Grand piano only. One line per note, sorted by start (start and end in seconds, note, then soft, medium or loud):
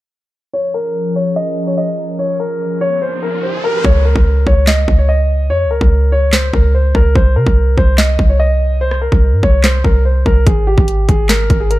0.53 0.71 C#5 medium
0.74 1.13 A#4 medium
1.16 1.33 C#5 medium
1.36 1.65 D#5 medium
1.67 1.76 C#5 medium
1.78 2.16 D#5 medium
2.19 2.36 C#5 medium
2.40 2.79 A#4 medium
2.81 2.99 C#5 medium
3.02 3.19 C5 medium
3.23 3.40 A#4 medium
3.43 3.61 C5 medium
3.64 3.81 A#4 loud
3.85 4.02 C#5 medium
4.05 4.44 A#4 medium
4.47 4.64 C#5 medium
4.68 4.97 D#5 medium
4.99 5.07 C#5 medium
5.09 5.48 D#5 medium
5.50 5.67 C#5 medium
5.71 6.10 A#4 medium
6.12 6.30 C#5 medium
6.33 6.50 C5 medium
6.54 6.71 A#4 medium
6.75 6.92 C5 medium
6.95 7.12 A#4 medium
7.15 7.33 C5 medium
7.36 7.75 A#4 medium
7.78 7.95 C5 medium
7.98 8.27 D#5 medium
8.29 8.38 C#5 medium
8.40 8.79 D#5 medium
8.81 8.98 C5 loud
9.02 9.41 A#4 medium
9.43 9.61 C#5 medium
9.64 9.81 C5 medium
9.84 10.02 A#4 medium
10.05 10.23 C5 medium
10.26 10.43 A#4 medium
10.46 10.64 G#4 medium
10.67 11.06 G4 medium
11.09 11.26 G#4 medium
11.29 11.58 A#4 medium
11.60 11.69 G#4 medium
11.71 11.79 A#4 medium